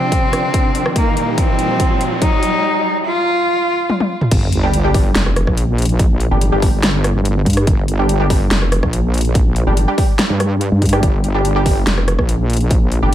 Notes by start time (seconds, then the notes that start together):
Already playing: C3 F3 C4 D4, riser
0.12 kick, closed hi-hat
0.33 cross-stick, closed hi-hat
0.54 kick, closed hi-hat
0.75 closed hi-hat
0.86 cross-stick
0.96 A#2 G3 A#3 D#4, kick, closed hi-hat
1.17 closed hi-hat
1.38 C4, kick, closed hi-hat
1.59 closed hi-hat
1.80 kick, closed hi-hat
2.01 closed hi-hat
2.22 D#4, kick, closed hi-hat
2.43 closed hi-hat
3.06 F4
3.90 high tom
4.00 high tom
4.21 mid tom
4.31 G1, kick, closed hi-hat, crash, sub drop
4.52 closed hi-hat
4.63 G3 D4 G4
4.74 closed hi-hat
4.84 G3 D4 G4
4.94 kick, open hi-hat
5.15 F1, snare, closed hi-hat
5.26 cross-stick
5.36 cross-stick, closed hi-hat
5.47 A#1, kick, cross-stick
5.57 closed hi-hat
5.78 closed hi-hat
5.82 closed hi-hat
5.85 closed hi-hat
5.99 kick, closed hi-hat
6.20 closed hi-hat
6.31 G1 G3 D4 G4
6.41 closed hi-hat
6.52 G1 G3 D4 G4
6.62 kick, open hi-hat
6.83 snare, closed hi-hat
7.04 cross-stick, closed hi-hat
7.15 G1
7.25 closed hi-hat
7.46 G2, kick, closed hi-hat
7.50 closed hi-hat
7.53 cross-stick, closed hi-hat
7.57 closed hi-hat
7.67 G1, kick, closed hi-hat
7.88 closed hi-hat
7.99 G3 D4 G4
8.09 closed hi-hat
8.20 G3 D4 G4
8.30 kick, open hi-hat
8.51 F1, snare, closed hi-hat
8.62 cross-stick
8.72 cross-stick, closed hi-hat
8.83 A#1, kick, cross-stick
8.93 closed hi-hat
9.14 closed hi-hat
9.18 closed hi-hat
9.21 closed hi-hat
9.25 closed hi-hat
9.35 kick, closed hi-hat
9.56 closed hi-hat
9.67 G1 G3 D4 G4
9.77 closed hi-hat
9.88 G3 D4 G4
9.98 kick, open hi-hat
10.19 snare, closed hi-hat
10.30 G2
10.40 cross-stick, closed hi-hat
10.61 closed hi-hat
10.72 G2
10.82 kick, closed hi-hat
10.86 closed hi-hat
10.89 G3 D4 G4, cross-stick, closed hi-hat
11.03 G1, kick, closed hi-hat
11.24 closed hi-hat
11.35 G3 D4 G4
11.45 closed hi-hat
11.56 G3 D4 G4
11.66 kick, open hi-hat
11.87 F1, snare, closed hi-hat
11.98 cross-stick
12.08 cross-stick, closed hi-hat
12.19 A#1, kick, cross-stick
12.29 closed hi-hat
12.50 closed hi-hat
12.53 closed hi-hat
12.57 closed hi-hat
12.61 closed hi-hat
12.71 kick, closed hi-hat
12.92 closed hi-hat
13.02 G1 G3 D4 G4